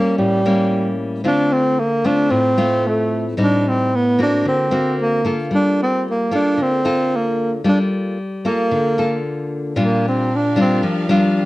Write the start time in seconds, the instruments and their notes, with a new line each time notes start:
Already playing: nylon-string guitar G3 A#3 C#4, tenor saxophone A#3
0.18 nylon-string guitar A2, tenor saxophone G3
0.46 nylon-string guitar G3 A#3 C#4
1.24 nylon-string guitar D3 A3 C4 F4, tenor saxophone D4
1.53 tenor saxophone C4
1.79 tenor saxophone A#3
2.04 nylon-string guitar A3 C4 F4, tenor saxophone D4
2.30 nylon-string guitar A2, tenor saxophone C4
2.58 nylon-string guitar A3 C4 F4
2.87 tenor saxophone A3
3.37 nylon-string guitar A2 G3 C4 D#4
3.43 tenor saxophone D4
3.69 tenor saxophone C4
3.95 tenor saxophone B3
4.19 nylon-string guitar A#3 C4 F#4, tenor saxophone D4
4.45 nylon-string guitar D3, tenor saxophone C4
4.71 nylon-string guitar A#3 C4 F#4
5.01 tenor saxophone A#3
5.25 nylon-string guitar A#3 F4 A4
5.51 nylon-string guitar G3, tenor saxophone D4
5.83 tenor saxophone C4
6.10 tenor saxophone A#3
6.31 nylon-string guitar A#3 F4 A4, tenor saxophone D4
6.57 nylon-string guitar D3
6.62 tenor saxophone C4
6.85 nylon-string guitar A#3 F4 A4
7.16 tenor saxophone A#3
7.64 nylon-string guitar G3 A#3 F4 A4
7.68 tenor saxophone D4
8.45 nylon-string guitar A#3 F4 A4, tenor saxophone A#3
8.71 nylon-string guitar D3
8.98 nylon-string guitar A#3 F4 A4
9.76 nylon-string guitar A#2 G3 D4 F4, violin section D4 G4 A#4 F5
9.83 tenor saxophone A#3
10.08 tenor saxophone C4
10.36 tenor saxophone D4
10.56 nylon-string guitar G3 D4 F4
10.61 tenor saxophone C4
10.83 nylon-string guitar F3
11.09 nylon-string guitar G3 D4 F4